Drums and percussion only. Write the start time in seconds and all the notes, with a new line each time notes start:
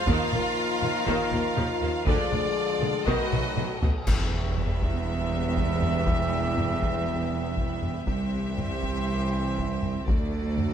0.07 taiko
0.33 taiko mid
0.82 taiko mid
1.07 taiko
1.32 taiko mid
1.57 taiko mid
2.07 taiko
2.32 taiko mid
2.82 taiko mid
3.07 taiko
3.33 taiko mid
3.57 taiko mid
3.83 taiko low
4.07 concert bass drum, taiko, crash
4.57 taiko low-mid
4.82 taiko
5.57 taiko
5.83 taiko low-mid
6.07 taiko
6.58 taiko low-mid
6.82 taiko
7.57 taiko
7.82 taiko low-mid
8.07 taiko
8.58 taiko low-mid
8.83 taiko
9.58 taiko
9.83 taiko low-mid
10.08 taiko
10.58 taiko low-mid